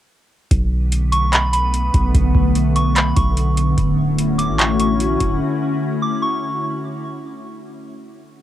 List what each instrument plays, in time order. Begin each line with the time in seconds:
0.51 808-style bass B1, ambient pad D3 A3 B3, kick, closed hi-hat
0.92 closed hi-hat
1.12 synth bell C#6, closed hi-hat
1.32 synth bell B5, clap, closed hi-hat
1.53 synth bell B5, closed hi-hat
1.74 closed hi-hat
1.94 808-style bass B1, kick, closed hi-hat
2.14 808-style bass B1, kick, closed hi-hat
2.35 808-style bass B1, kick
2.55 closed hi-hat
2.76 synth bell C#6, closed hi-hat
2.96 synth bell B5, clap, closed hi-hat
3.16 808-style bass B1, synth bell C#6, kick, closed hi-hat
3.37 closed hi-hat
3.57 closed hi-hat
3.78 808-style bass D1, ambient pad A3 C#4 E4 F#4, kick, closed hi-hat
4.18 closed hi-hat
4.38 synth bell D6, closed hi-hat
4.49 808-style bass A1
4.58 synth bell C#6, clap, closed hi-hat
4.80 synth bell C#6, closed hi-hat
5.00 closed hi-hat
5.20 808-style bass D1, kick, closed hi-hat
6.02 synth bell D6
6.22 synth bell C#6